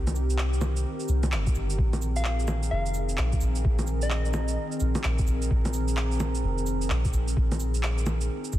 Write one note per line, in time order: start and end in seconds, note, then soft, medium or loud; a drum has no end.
0.00 0.85 C2 loud
0.00 8.59 D#3 medium
0.00 1.75 C4 medium
0.00 1.75 G4 medium
0.00 1.75 A#4 medium
0.07 low bongo soft
0.07 shaker soft
0.16 cabasa medium
0.30 shaker medium
0.38 clap loud
0.53 shaker soft
0.61 low bongo medium
0.61 cabasa medium
0.77 shaker medium
1.00 shaker soft
1.08 1.34 C2 medium
1.08 cabasa medium
1.23 low bongo medium
1.23 shaker medium
1.32 1.46 G1 loud
1.32 clap loud
1.47 kick loud
1.47 shaker soft
1.55 1.78 G1 medium
1.55 cabasa medium
1.70 shaker medium
1.79 2.71 A#1 loud
1.79 8.59 C4 medium
1.79 8.59 G#4 medium
1.79 8.59 A#4 medium
1.79 kick loud
1.93 low bongo soft
1.93 shaker soft
2.02 cabasa medium
2.16 2.41 F5 loud
2.16 shaker medium
2.24 clap loud
2.39 shaker soft
2.48 low bongo medium
2.48 cabasa medium
2.63 shaker medium
2.71 3.17 F1 medium
2.71 2.96 F5 medium
2.86 shaker soft
2.94 cabasa medium
3.09 shaker medium
3.18 3.40 A#1 medium
3.18 clap loud
3.33 kick loud
3.33 shaker soft
3.41 3.64 A#1 loud
3.41 cabasa medium
3.56 shaker medium
3.65 4.57 A#1 loud
3.65 kick loud
3.79 low bongo soft
3.79 shaker soft
3.87 cabasa medium
4.02 4.67 D#5 loud
4.02 shaker medium
4.10 clap loud
4.25 shaker soft
4.34 low bongo medium
4.34 cabasa medium
4.48 shaker medium
4.72 shaker soft
4.80 4.95 A#1 medium
4.80 cabasa medium
4.95 low bongo medium
4.95 shaker medium
5.03 5.18 A#1 medium
5.03 clap loud
5.19 kick loud
5.19 shaker soft
5.27 5.49 A#1 loud
5.27 cabasa medium
5.42 shaker medium
5.51 6.43 A#1 loud
5.51 kick loud
5.65 low bongo soft
5.65 shaker soft
5.73 cabasa medium
5.88 shaker medium
5.97 clap loud
6.12 shaker soft
6.20 low bongo medium
6.20 cabasa medium
6.35 shaker medium
6.44 6.89 F1 medium
6.58 shaker soft
6.67 cabasa medium
6.82 shaker medium
6.90 7.12 A#1 medium
6.90 clap loud
7.05 kick loud
7.05 shaker soft
7.13 7.35 A#1 loud
7.13 cabasa medium
7.28 shaker medium
7.37 8.29 A#1 loud
7.37 kick loud
7.52 low bongo soft
7.52 shaker soft
7.60 cabasa medium
7.74 shaker medium
7.83 clap loud
7.98 shaker soft
8.06 low bongo medium
8.06 cabasa medium
8.21 shaker medium
8.44 shaker soft
8.53 8.59 A#1 medium
8.53 kick medium
8.53 cabasa medium